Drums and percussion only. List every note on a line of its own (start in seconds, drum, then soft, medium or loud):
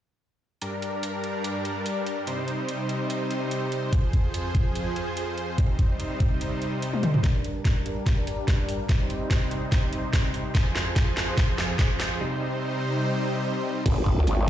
0.62 closed hi-hat medium
0.82 closed hi-hat soft
1.03 closed hi-hat medium
1.24 closed hi-hat soft
1.44 closed hi-hat medium
1.65 closed hi-hat soft
1.86 closed hi-hat medium
2.06 closed hi-hat soft
2.27 closed hi-hat medium
2.48 closed hi-hat soft
2.69 closed hi-hat medium
2.89 closed hi-hat soft
3.10 closed hi-hat medium
3.31 closed hi-hat soft
3.51 closed hi-hat medium
3.72 closed hi-hat soft
3.93 kick loud
3.93 closed hi-hat medium
4.13 kick medium
4.13 closed hi-hat soft
4.34 closed hi-hat medium
4.55 kick loud
4.55 closed hi-hat soft
4.75 closed hi-hat medium
4.96 closed hi-hat soft
5.17 closed hi-hat medium
5.38 closed hi-hat soft
5.58 kick loud
5.58 closed hi-hat medium
5.79 kick medium
5.79 closed hi-hat soft
6.00 closed hi-hat medium
6.20 kick loud
6.20 closed hi-hat soft
6.41 closed hi-hat medium
6.62 closed hi-hat soft
6.82 closed hi-hat medium
6.93 high tom soft
7.03 closed hi-hat soft
7.03 mid tom medium
7.14 mid tom medium
7.24 kick loud
7.24 snare soft
7.24 closed hi-hat medium
7.44 closed hi-hat medium
7.65 kick medium
7.65 snare medium
7.65 closed hi-hat medium
7.86 closed hi-hat medium
8.06 kick loud
8.06 snare soft
8.06 closed hi-hat medium
8.27 closed hi-hat medium
8.48 kick medium
8.48 snare medium
8.48 closed hi-hat medium
8.69 open hi-hat medium
8.89 kick loud
8.89 snare medium
8.89 closed hi-hat medium
9.10 closed hi-hat soft
9.31 kick medium
9.31 snare medium
9.31 closed hi-hat medium
9.51 closed hi-hat medium
9.72 kick loud
9.72 snare medium
9.72 closed hi-hat medium
9.93 closed hi-hat medium
10.13 kick medium
10.13 snare medium
10.13 closed hi-hat medium
10.34 open hi-hat medium
10.55 kick loud
10.55 snare medium
10.55 closed hi-hat medium
10.75 snare medium
10.75 closed hi-hat medium
10.96 kick loud
10.96 snare medium
10.96 closed hi-hat medium
11.17 snare medium
11.17 closed hi-hat medium
11.37 kick loud
11.37 snare medium
11.37 closed hi-hat medium
11.58 snare medium
11.58 closed hi-hat medium
11.79 kick medium
11.79 snare medium
11.79 closed hi-hat medium
12.00 snare medium
12.00 open hi-hat medium
13.86 kick loud
13.86 closed hi-hat medium
13.86 crash loud
14.06 kick medium
14.27 closed hi-hat medium